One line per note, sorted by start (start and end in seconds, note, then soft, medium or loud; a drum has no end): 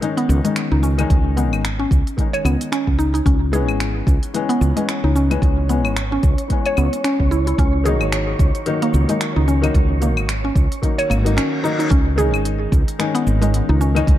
0.01 0.40 D#3 medium
0.01 0.41 G#3 medium
0.01 0.41 C#4 medium
0.01 0.41 D#4 loud
0.01 closed hi-hat soft
0.01 shaker soft
0.17 0.28 B3 loud
0.17 closed hi-hat soft
0.29 0.39 C#2 medium
0.29 shaker medium
0.44 0.95 D#3 medium
0.44 0.70 G#3 medium
0.44 0.95 G#3 medium
0.44 0.95 C#4 medium
0.44 0.96 D#4 medium
0.44 closed hi-hat soft
0.44 shaker soft
0.56 finger snap medium
0.56 closed hi-hat soft
0.56 shaker soft
0.72 1.04 C#2 medium
0.72 0.82 D#4 medium
0.83 0.98 C#4 medium
0.83 shaker medium
0.98 1.34 D#3 medium
0.98 1.34 G#3 medium
0.98 1.35 C#4 medium
0.98 1.35 D#4 loud
0.98 closed hi-hat soft
0.98 claves medium
0.98 shaker soft
1.10 1.52 C#2 medium
1.10 kick loud
1.10 closed hi-hat soft
1.10 shaker soft
1.36 1.60 D#3 medium
1.36 1.60 G#3 medium
1.36 1.52 B3 medium
1.36 1.61 C#4 medium
1.36 1.61 D#4 medium
1.36 closed hi-hat soft
1.36 shaker medium
1.52 1.85 G#1 medium
1.52 claves medium
1.52 shaker soft
1.65 finger snap loud
1.65 closed hi-hat medium
1.65 shaker soft
1.79 2.32 C#4 medium
1.91 2.01 C#2 medium
1.91 kick loud
1.91 closed hi-hat soft
1.91 shaker medium
2.07 closed hi-hat soft
2.07 shaker soft
2.17 3.24 D#3 medium
2.17 3.25 G#3 medium
2.17 3.26 C#4 medium
2.17 3.26 D#4 medium
2.17 kick medium
2.17 closed hi-hat soft
2.17 shaker soft
2.33 2.44 C#5 loud
2.33 closed hi-hat soft
2.33 claves medium
2.45 2.55 C#2 medium
2.45 2.60 B3 medium
2.45 closed hi-hat soft
2.45 claves medium
2.45 shaker medium
2.61 closed hi-hat soft
2.61 shaker soft
2.72 2.98 C#4 medium
2.72 finger snap medium
2.72 closed hi-hat soft
2.72 shaker soft
2.87 3.20 C#2 medium
2.87 kick medium
2.99 3.13 D#4 loud
2.99 shaker medium
3.14 3.25 D#4 medium
3.14 closed hi-hat soft
3.14 shaker soft
3.26 3.68 C#2 medium
3.26 3.52 C#4 loud
3.26 11.92 C#5 medium
3.26 kick loud
3.26 closed hi-hat soft
3.26 shaker soft
3.52 4.31 E3 medium
3.52 4.31 G#3 medium
3.52 4.32 B3 medium
3.52 4.33 C#4 medium
3.52 4.06 G#4 loud
3.52 closed hi-hat soft
3.52 shaker medium
3.68 4.01 G#1 medium
3.68 claves medium
3.68 shaker soft
3.80 finger snap medium
3.80 closed hi-hat medium
3.80 shaker soft
4.07 4.17 C#2 medium
4.07 kick loud
4.07 closed hi-hat soft
4.07 shaker medium
4.23 closed hi-hat soft
4.23 shaker soft
4.34 4.73 E3 loud
4.34 4.73 G#3 medium
4.34 4.73 B3 medium
4.34 4.74 C#4 loud
4.34 closed hi-hat soft
4.34 shaker soft
4.49 4.60 B3 loud
4.49 closed hi-hat soft
4.61 4.71 C#2 medium
4.61 shaker medium
4.76 5.27 E3 medium
4.76 5.27 G#3 medium
4.76 5.02 G#3 medium
4.76 5.27 B3 medium
4.76 5.27 C#4 medium
4.76 closed hi-hat soft
4.76 shaker soft
4.89 finger snap medium
4.89 closed hi-hat soft
4.89 shaker soft
5.04 5.36 C#2 medium
5.04 5.14 D#4 medium
5.16 5.30 C#4 medium
5.16 shaker medium
5.30 5.66 E3 medium
5.30 5.67 G#3 medium
5.30 5.67 B3 medium
5.30 5.67 C#4 loud
5.30 closed hi-hat soft
5.30 claves medium
5.30 shaker soft
5.42 5.85 C#2 loud
5.42 kick loud
5.42 closed hi-hat soft
5.42 shaker soft
5.68 5.92 E3 medium
5.68 5.93 G#3 medium
5.68 5.84 B3 medium
5.68 5.93 B3 medium
5.68 5.94 C#4 medium
5.68 closed hi-hat soft
5.68 shaker medium
5.85 6.17 G#1 medium
5.85 claves medium
5.85 shaker soft
5.97 finger snap medium
5.97 closed hi-hat medium
5.97 shaker soft
6.12 6.65 C#4 medium
6.23 6.33 C#2 medium
6.23 kick loud
6.23 closed hi-hat soft
6.23 shaker medium
6.38 closed hi-hat soft
6.38 shaker soft
6.48 7.56 E3 medium
6.48 7.57 G#3 medium
6.48 7.57 B3 medium
6.48 kick medium
6.48 closed hi-hat medium
6.48 shaker soft
6.52 7.58 C#4 medium
6.66 6.77 C#5 loud
6.66 closed hi-hat soft
6.66 claves medium
6.77 6.88 C#2 medium
6.77 6.92 B3 medium
6.77 claves medium
6.77 shaker medium
6.93 closed hi-hat soft
6.93 shaker soft
7.04 7.30 C#4 medium
7.04 finger snap medium
7.04 closed hi-hat soft
7.04 shaker soft
7.20 7.52 C#2 medium
7.20 kick medium
7.31 7.46 E4 medium
7.31 shaker medium
7.47 7.58 E4 medium
7.47 closed hi-hat soft
7.47 shaker soft
7.58 8.01 C#2 loud
7.58 7.85 C#4 loud
7.58 kick loud
7.58 closed hi-hat medium
7.58 shaker soft
7.84 8.63 D#3 medium
7.84 8.64 F#3 medium
7.84 8.64 A#3 medium
7.84 8.38 G#4 loud
7.84 closed hi-hat soft
7.84 shaker medium
7.88 8.65 D#4 loud
8.01 8.33 G#1 medium
8.01 claves medium
8.01 shaker soft
8.12 finger snap loud
8.12 closed hi-hat medium
8.12 shaker soft
8.39 8.50 C#2 medium
8.39 kick loud
8.39 closed hi-hat soft
8.39 shaker medium
8.55 closed hi-hat soft
8.55 shaker soft
8.66 9.05 D#3 loud
8.66 9.06 F#3 medium
8.66 9.06 A#3 medium
8.66 9.06 D#4 loud
8.66 closed hi-hat medium
8.66 shaker soft
8.82 8.93 A#3 loud
8.82 closed hi-hat soft
8.94 9.04 C#2 medium
8.94 shaker medium
9.08 9.59 D#3 medium
9.08 9.60 F#3 medium
9.08 9.35 G#3 medium
9.08 9.60 A#3 medium
9.08 9.60 D#4 medium
9.08 closed hi-hat soft
9.08 shaker soft
9.21 finger snap medium
9.21 closed hi-hat medium
9.21 shaker soft
9.36 9.69 C#2 medium
9.36 9.47 D#4 medium
9.48 9.63 C#4 medium
9.48 shaker medium
9.62 9.98 D#3 medium
9.62 9.99 F#3 medium
9.62 9.99 A#3 medium
9.62 9.99 D#4 loud
9.62 closed hi-hat soft
9.62 claves medium
9.62 shaker soft
9.74 10.17 C#2 loud
9.74 kick loud
9.74 closed hi-hat medium
9.74 shaker soft
10.01 10.25 D#3 medium
10.01 10.25 F#3 medium
10.01 10.25 A#3 medium
10.01 10.17 A#3 medium
10.01 10.26 D#4 medium
10.01 closed hi-hat soft
10.01 shaker medium
10.17 10.49 G#1 medium
10.17 claves medium
10.17 shaker soft
10.29 finger snap loud
10.29 closed hi-hat medium
10.29 shaker soft
10.45 10.97 C#4 medium
10.56 10.66 C#2 medium
10.56 kick medium
10.56 closed hi-hat soft
10.56 shaker medium
10.72 closed hi-hat soft
10.72 shaker soft
10.82 11.22 D#3 medium
10.82 11.22 F#3 medium
10.82 11.22 A#3 medium
10.82 11.23 D#4 medium
10.82 kick medium
10.82 closed hi-hat medium
10.82 reverse cymbal medium
10.82 shaker soft
10.98 11.09 C#5 loud
10.98 closed hi-hat soft
10.98 claves medium
11.10 11.37 G#1 medium
11.10 11.25 A#3 medium
11.10 closed hi-hat soft
11.10 claves medium
11.10 shaker medium
11.24 11.61 D#3 medium
11.24 11.61 F#3 medium
11.24 11.61 A#3 medium
11.24 11.62 D#4 medium
11.24 closed hi-hat soft
11.24 shaker soft
11.37 11.63 C#4 medium
11.37 finger snap medium
11.37 closed hi-hat medium
11.37 shaker soft
11.63 11.87 D#3 medium
11.63 11.87 F#3 medium
11.63 11.88 A#3 medium
11.63 11.78 D#4 medium
11.63 11.88 D#4 loud
11.63 shaker medium
11.79 11.90 D#4 medium
11.79 closed hi-hat soft
11.79 shaker soft
11.91 12.34 C#2 medium
11.91 12.17 C#4 loud
11.91 kick loud
11.91 closed hi-hat medium
11.91 shaker soft
12.16 12.95 D#3 medium
12.16 12.96 G#3 medium
12.16 12.97 C#4 medium
12.16 12.97 D#4 loud
12.16 12.71 G#4 loud
12.16 closed hi-hat soft
12.16 shaker medium
12.34 12.66 G#1 medium
12.34 claves medium
12.34 shaker soft
12.45 closed hi-hat medium
12.45 shaker soft
12.72 12.82 C#2 medium
12.72 kick loud
12.72 closed hi-hat soft
12.72 shaker medium
12.88 closed hi-hat soft
12.88 shaker soft
12.99 13.38 D#3 medium
12.99 13.38 G#3 medium
12.99 13.38 C#4 medium
12.99 13.39 D#4 loud
12.99 finger snap medium
12.99 closed hi-hat medium
12.99 shaker soft
13.15 13.26 B3 loud
13.15 closed hi-hat soft
13.27 13.60 G#1 medium
13.27 shaker medium
13.41 13.92 D#3 medium
13.41 13.92 G#3 medium
13.41 13.67 G#3 medium
13.41 13.92 C#4 medium
13.41 13.93 D#4 medium
13.41 closed hi-hat soft
13.41 shaker soft
13.54 closed hi-hat medium
13.54 shaker soft
13.69 14.01 C#2 medium
13.69 13.79 D#4 medium
13.81 13.95 C#4 medium
13.81 shaker medium
13.95 14.19 D#3 loud
13.95 14.19 G#3 medium
13.95 14.19 C#4 medium
13.95 14.19 D#4 loud
13.95 closed hi-hat soft
13.95 claves medium
13.95 shaker soft
14.07 14.19 C#2 loud
14.07 kick loud
14.07 closed hi-hat medium
14.07 shaker soft